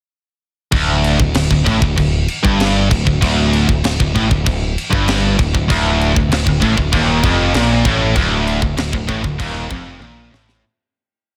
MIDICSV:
0, 0, Header, 1, 4, 480
1, 0, Start_track
1, 0, Tempo, 624350
1, 557, Time_signature, 4, 2, 24, 8
1, 3434, Tempo, 616650
1, 8803, End_track
2, 0, Start_track
2, 0, Title_t, "Distorted electric guitar"
2, 0, Program_c, 0, 30
2, 562, Note_on_c, 0, 38, 108
2, 911, Note_off_c, 0, 38, 0
2, 920, Note_on_c, 0, 38, 72
2, 1032, Note_off_c, 0, 38, 0
2, 1041, Note_on_c, 0, 38, 74
2, 1160, Note_off_c, 0, 38, 0
2, 1171, Note_on_c, 0, 38, 69
2, 1279, Note_off_c, 0, 38, 0
2, 1282, Note_on_c, 0, 45, 99
2, 1393, Note_off_c, 0, 45, 0
2, 1409, Note_on_c, 0, 38, 78
2, 1512, Note_off_c, 0, 38, 0
2, 1521, Note_on_c, 0, 38, 72
2, 1713, Note_off_c, 0, 38, 0
2, 1870, Note_on_c, 0, 43, 108
2, 2227, Note_off_c, 0, 43, 0
2, 2232, Note_on_c, 0, 38, 83
2, 2347, Note_off_c, 0, 38, 0
2, 2356, Note_on_c, 0, 38, 77
2, 2457, Note_off_c, 0, 38, 0
2, 2467, Note_on_c, 0, 38, 102
2, 2821, Note_off_c, 0, 38, 0
2, 2830, Note_on_c, 0, 38, 73
2, 2947, Note_off_c, 0, 38, 0
2, 2956, Note_on_c, 0, 38, 73
2, 3073, Note_off_c, 0, 38, 0
2, 3083, Note_on_c, 0, 38, 74
2, 3190, Note_off_c, 0, 38, 0
2, 3193, Note_on_c, 0, 45, 95
2, 3306, Note_off_c, 0, 45, 0
2, 3310, Note_on_c, 0, 38, 74
2, 3419, Note_off_c, 0, 38, 0
2, 3429, Note_on_c, 0, 38, 70
2, 3624, Note_off_c, 0, 38, 0
2, 3792, Note_on_c, 0, 43, 98
2, 4147, Note_off_c, 0, 43, 0
2, 4153, Note_on_c, 0, 38, 76
2, 4266, Note_off_c, 0, 38, 0
2, 4275, Note_on_c, 0, 38, 75
2, 4391, Note_off_c, 0, 38, 0
2, 4400, Note_on_c, 0, 38, 103
2, 4744, Note_off_c, 0, 38, 0
2, 4753, Note_on_c, 0, 38, 78
2, 4865, Note_off_c, 0, 38, 0
2, 4874, Note_on_c, 0, 38, 73
2, 4977, Note_off_c, 0, 38, 0
2, 4987, Note_on_c, 0, 38, 69
2, 5106, Note_off_c, 0, 38, 0
2, 5109, Note_on_c, 0, 45, 108
2, 5226, Note_off_c, 0, 45, 0
2, 5233, Note_on_c, 0, 38, 72
2, 5344, Note_off_c, 0, 38, 0
2, 5347, Note_on_c, 0, 39, 106
2, 5584, Note_off_c, 0, 39, 0
2, 5590, Note_on_c, 0, 41, 94
2, 5825, Note_off_c, 0, 41, 0
2, 5831, Note_on_c, 0, 46, 105
2, 6066, Note_off_c, 0, 46, 0
2, 6077, Note_on_c, 0, 45, 108
2, 6308, Note_off_c, 0, 45, 0
2, 6312, Note_on_c, 0, 38, 110
2, 6658, Note_off_c, 0, 38, 0
2, 6668, Note_on_c, 0, 38, 71
2, 6774, Note_off_c, 0, 38, 0
2, 6783, Note_on_c, 0, 38, 76
2, 6895, Note_off_c, 0, 38, 0
2, 6904, Note_on_c, 0, 38, 66
2, 7016, Note_off_c, 0, 38, 0
2, 7019, Note_on_c, 0, 45, 96
2, 7139, Note_off_c, 0, 45, 0
2, 7146, Note_on_c, 0, 38, 73
2, 7265, Note_off_c, 0, 38, 0
2, 7268, Note_on_c, 0, 39, 99
2, 7503, Note_off_c, 0, 39, 0
2, 7511, Note_on_c, 0, 41, 105
2, 7745, Note_off_c, 0, 41, 0
2, 7754, Note_on_c, 0, 46, 105
2, 7986, Note_off_c, 0, 46, 0
2, 7992, Note_on_c, 0, 45, 95
2, 8225, Note_off_c, 0, 45, 0
2, 8803, End_track
3, 0, Start_track
3, 0, Title_t, "Picked electric bass"
3, 0, Program_c, 1, 34
3, 556, Note_on_c, 1, 26, 87
3, 892, Note_off_c, 1, 26, 0
3, 917, Note_on_c, 1, 26, 77
3, 1029, Note_off_c, 1, 26, 0
3, 1032, Note_on_c, 1, 26, 82
3, 1147, Note_off_c, 1, 26, 0
3, 1158, Note_on_c, 1, 26, 77
3, 1270, Note_off_c, 1, 26, 0
3, 1280, Note_on_c, 1, 33, 95
3, 1391, Note_off_c, 1, 33, 0
3, 1396, Note_on_c, 1, 26, 89
3, 1509, Note_off_c, 1, 26, 0
3, 1521, Note_on_c, 1, 26, 76
3, 1743, Note_off_c, 1, 26, 0
3, 1880, Note_on_c, 1, 31, 91
3, 2215, Note_off_c, 1, 31, 0
3, 2236, Note_on_c, 1, 26, 82
3, 2349, Note_off_c, 1, 26, 0
3, 2357, Note_on_c, 1, 26, 84
3, 2469, Note_off_c, 1, 26, 0
3, 2474, Note_on_c, 1, 26, 92
3, 2810, Note_off_c, 1, 26, 0
3, 2830, Note_on_c, 1, 26, 82
3, 2942, Note_off_c, 1, 26, 0
3, 2946, Note_on_c, 1, 26, 80
3, 3062, Note_off_c, 1, 26, 0
3, 3073, Note_on_c, 1, 26, 79
3, 3185, Note_off_c, 1, 26, 0
3, 3193, Note_on_c, 1, 33, 86
3, 3305, Note_off_c, 1, 33, 0
3, 3311, Note_on_c, 1, 26, 88
3, 3423, Note_off_c, 1, 26, 0
3, 3432, Note_on_c, 1, 26, 84
3, 3657, Note_off_c, 1, 26, 0
3, 3790, Note_on_c, 1, 31, 96
3, 4128, Note_off_c, 1, 31, 0
3, 4151, Note_on_c, 1, 26, 86
3, 4265, Note_off_c, 1, 26, 0
3, 4269, Note_on_c, 1, 26, 79
3, 4384, Note_off_c, 1, 26, 0
3, 4392, Note_on_c, 1, 26, 94
3, 4729, Note_off_c, 1, 26, 0
3, 4750, Note_on_c, 1, 26, 82
3, 4861, Note_off_c, 1, 26, 0
3, 4866, Note_on_c, 1, 26, 87
3, 4982, Note_off_c, 1, 26, 0
3, 4986, Note_on_c, 1, 26, 83
3, 5100, Note_off_c, 1, 26, 0
3, 5105, Note_on_c, 1, 33, 99
3, 5222, Note_off_c, 1, 33, 0
3, 5230, Note_on_c, 1, 26, 87
3, 5345, Note_off_c, 1, 26, 0
3, 5349, Note_on_c, 1, 27, 98
3, 5575, Note_off_c, 1, 27, 0
3, 5586, Note_on_c, 1, 29, 97
3, 5813, Note_off_c, 1, 29, 0
3, 5826, Note_on_c, 1, 34, 96
3, 6053, Note_off_c, 1, 34, 0
3, 6064, Note_on_c, 1, 33, 98
3, 6292, Note_off_c, 1, 33, 0
3, 6309, Note_on_c, 1, 26, 101
3, 6646, Note_off_c, 1, 26, 0
3, 6667, Note_on_c, 1, 26, 81
3, 6778, Note_off_c, 1, 26, 0
3, 6782, Note_on_c, 1, 26, 84
3, 6899, Note_off_c, 1, 26, 0
3, 6905, Note_on_c, 1, 26, 73
3, 7020, Note_off_c, 1, 26, 0
3, 7027, Note_on_c, 1, 33, 94
3, 7141, Note_off_c, 1, 33, 0
3, 7146, Note_on_c, 1, 26, 83
3, 7261, Note_off_c, 1, 26, 0
3, 7269, Note_on_c, 1, 27, 91
3, 7494, Note_off_c, 1, 27, 0
3, 7512, Note_on_c, 1, 29, 99
3, 7735, Note_off_c, 1, 29, 0
3, 7744, Note_on_c, 1, 34, 92
3, 7971, Note_off_c, 1, 34, 0
3, 7998, Note_on_c, 1, 33, 95
3, 8219, Note_off_c, 1, 33, 0
3, 8803, End_track
4, 0, Start_track
4, 0, Title_t, "Drums"
4, 552, Note_on_c, 9, 49, 84
4, 556, Note_on_c, 9, 36, 108
4, 629, Note_off_c, 9, 49, 0
4, 633, Note_off_c, 9, 36, 0
4, 801, Note_on_c, 9, 49, 67
4, 877, Note_off_c, 9, 49, 0
4, 919, Note_on_c, 9, 36, 97
4, 996, Note_off_c, 9, 36, 0
4, 1033, Note_on_c, 9, 49, 95
4, 1042, Note_on_c, 9, 38, 120
4, 1110, Note_off_c, 9, 49, 0
4, 1119, Note_off_c, 9, 38, 0
4, 1158, Note_on_c, 9, 36, 93
4, 1235, Note_off_c, 9, 36, 0
4, 1280, Note_on_c, 9, 36, 80
4, 1280, Note_on_c, 9, 49, 69
4, 1357, Note_off_c, 9, 36, 0
4, 1357, Note_off_c, 9, 49, 0
4, 1399, Note_on_c, 9, 36, 79
4, 1476, Note_off_c, 9, 36, 0
4, 1518, Note_on_c, 9, 49, 86
4, 1520, Note_on_c, 9, 36, 92
4, 1594, Note_off_c, 9, 49, 0
4, 1597, Note_off_c, 9, 36, 0
4, 1755, Note_on_c, 9, 49, 68
4, 1832, Note_off_c, 9, 49, 0
4, 1880, Note_on_c, 9, 36, 109
4, 1957, Note_off_c, 9, 36, 0
4, 1999, Note_on_c, 9, 49, 88
4, 2007, Note_on_c, 9, 38, 116
4, 2076, Note_off_c, 9, 49, 0
4, 2084, Note_off_c, 9, 38, 0
4, 2238, Note_on_c, 9, 49, 70
4, 2239, Note_on_c, 9, 36, 97
4, 2315, Note_off_c, 9, 49, 0
4, 2316, Note_off_c, 9, 36, 0
4, 2359, Note_on_c, 9, 36, 74
4, 2435, Note_off_c, 9, 36, 0
4, 2477, Note_on_c, 9, 49, 90
4, 2478, Note_on_c, 9, 36, 98
4, 2554, Note_off_c, 9, 49, 0
4, 2555, Note_off_c, 9, 36, 0
4, 2715, Note_on_c, 9, 49, 63
4, 2792, Note_off_c, 9, 49, 0
4, 2836, Note_on_c, 9, 36, 95
4, 2913, Note_off_c, 9, 36, 0
4, 2952, Note_on_c, 9, 49, 82
4, 2961, Note_on_c, 9, 38, 123
4, 3029, Note_off_c, 9, 49, 0
4, 3038, Note_off_c, 9, 38, 0
4, 3076, Note_on_c, 9, 36, 91
4, 3153, Note_off_c, 9, 36, 0
4, 3196, Note_on_c, 9, 36, 82
4, 3196, Note_on_c, 9, 49, 57
4, 3273, Note_off_c, 9, 36, 0
4, 3273, Note_off_c, 9, 49, 0
4, 3314, Note_on_c, 9, 36, 89
4, 3391, Note_off_c, 9, 36, 0
4, 3431, Note_on_c, 9, 49, 83
4, 3433, Note_on_c, 9, 36, 90
4, 3508, Note_off_c, 9, 49, 0
4, 3511, Note_off_c, 9, 36, 0
4, 3678, Note_on_c, 9, 49, 66
4, 3755, Note_off_c, 9, 49, 0
4, 3793, Note_on_c, 9, 36, 117
4, 3870, Note_off_c, 9, 36, 0
4, 3909, Note_on_c, 9, 49, 86
4, 3918, Note_on_c, 9, 38, 125
4, 3987, Note_off_c, 9, 49, 0
4, 3996, Note_off_c, 9, 38, 0
4, 4152, Note_on_c, 9, 49, 61
4, 4153, Note_on_c, 9, 36, 101
4, 4230, Note_off_c, 9, 49, 0
4, 4231, Note_off_c, 9, 36, 0
4, 4274, Note_on_c, 9, 36, 81
4, 4352, Note_off_c, 9, 36, 0
4, 4395, Note_on_c, 9, 36, 99
4, 4396, Note_on_c, 9, 49, 87
4, 4473, Note_off_c, 9, 36, 0
4, 4474, Note_off_c, 9, 49, 0
4, 4637, Note_on_c, 9, 49, 56
4, 4715, Note_off_c, 9, 49, 0
4, 4755, Note_on_c, 9, 36, 101
4, 4833, Note_off_c, 9, 36, 0
4, 4873, Note_on_c, 9, 49, 85
4, 4882, Note_on_c, 9, 38, 111
4, 4951, Note_off_c, 9, 49, 0
4, 4959, Note_off_c, 9, 38, 0
4, 4992, Note_on_c, 9, 36, 96
4, 5070, Note_off_c, 9, 36, 0
4, 5107, Note_on_c, 9, 49, 63
4, 5111, Note_on_c, 9, 36, 81
4, 5185, Note_off_c, 9, 49, 0
4, 5189, Note_off_c, 9, 36, 0
4, 5231, Note_on_c, 9, 36, 83
4, 5309, Note_off_c, 9, 36, 0
4, 5348, Note_on_c, 9, 49, 88
4, 5350, Note_on_c, 9, 36, 105
4, 5426, Note_off_c, 9, 49, 0
4, 5428, Note_off_c, 9, 36, 0
4, 5588, Note_on_c, 9, 49, 68
4, 5590, Note_on_c, 9, 36, 111
4, 5666, Note_off_c, 9, 49, 0
4, 5668, Note_off_c, 9, 36, 0
4, 5828, Note_on_c, 9, 49, 89
4, 5837, Note_on_c, 9, 38, 124
4, 5906, Note_off_c, 9, 49, 0
4, 5914, Note_off_c, 9, 38, 0
4, 6069, Note_on_c, 9, 36, 108
4, 6069, Note_on_c, 9, 49, 67
4, 6147, Note_off_c, 9, 36, 0
4, 6147, Note_off_c, 9, 49, 0
4, 6305, Note_on_c, 9, 49, 85
4, 6308, Note_on_c, 9, 36, 108
4, 6383, Note_off_c, 9, 49, 0
4, 6386, Note_off_c, 9, 36, 0
4, 6552, Note_on_c, 9, 49, 61
4, 6630, Note_off_c, 9, 49, 0
4, 6668, Note_on_c, 9, 36, 97
4, 6746, Note_off_c, 9, 36, 0
4, 6787, Note_on_c, 9, 49, 84
4, 6796, Note_on_c, 9, 38, 115
4, 6865, Note_off_c, 9, 49, 0
4, 6874, Note_off_c, 9, 38, 0
4, 6910, Note_on_c, 9, 36, 96
4, 6988, Note_off_c, 9, 36, 0
4, 7030, Note_on_c, 9, 36, 87
4, 7033, Note_on_c, 9, 49, 57
4, 7108, Note_off_c, 9, 36, 0
4, 7111, Note_off_c, 9, 49, 0
4, 7151, Note_on_c, 9, 36, 82
4, 7229, Note_off_c, 9, 36, 0
4, 7272, Note_on_c, 9, 36, 103
4, 7274, Note_on_c, 9, 49, 90
4, 7350, Note_off_c, 9, 36, 0
4, 7352, Note_off_c, 9, 49, 0
4, 7512, Note_on_c, 9, 36, 106
4, 7515, Note_on_c, 9, 49, 66
4, 7590, Note_off_c, 9, 36, 0
4, 7592, Note_off_c, 9, 49, 0
4, 7757, Note_on_c, 9, 48, 68
4, 7835, Note_off_c, 9, 48, 0
4, 8007, Note_on_c, 9, 38, 98
4, 8085, Note_off_c, 9, 38, 0
4, 8121, Note_on_c, 9, 38, 92
4, 8199, Note_off_c, 9, 38, 0
4, 8803, End_track
0, 0, End_of_file